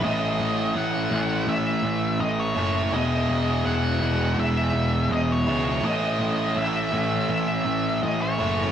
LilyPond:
<<
  \new Staff \with { instrumentName = "Lead electric guitar" } { \time 4/4 \key a \lydian \tempo 4 = 82 dis''4 fis''4 e''4 dis''16 cis''8. | dis''4 fis''4 e''4 dis''16 cis''8. | dis''4 e''4 e''4 dis''16 cis''8. | }
  \new Staff \with { instrumentName = "Overdriven electric guitar" } { \clef bass \time 4/4 \key a \lydian <a, e a cis' e'>2.~ <a, e a cis' e'>8 <a, e a cis' e'>8 | <e, b, e gis b e'>2.~ <e, b, e gis b e'>8 <e, b, e gis b e'>8 | <a, e a cis' e'>2.~ <a, e a cis' e'>8 <a, e a cis' e'>8 | }
  \new Staff \with { instrumentName = "Distorted electric guitar" } { \clef bass \time 4/4 \key a \lydian <a, e a>4. <a, e a>4. <a, e a>4 | <e, b, e>4. <e, b, e>4. <e, b, e>4 | <a, e a>4. <a, e a>4. <a, e a>4 | }
  \new Staff \with { instrumentName = "Picked electric bass" } { \clef bass \time 4/4 \key a \lydian a,,8 a,,8 a,,8 a,,8 a,,8 a,,8 a,,8 fis,,8 | e,,8 e,,8 e,,8 e,,8 e,,8 e,,8 e,,8 cis,8 | a,,8 a,,8 a,,8 a,,8 a,,8 a,,8 a,,8 fis,,8 | }
>>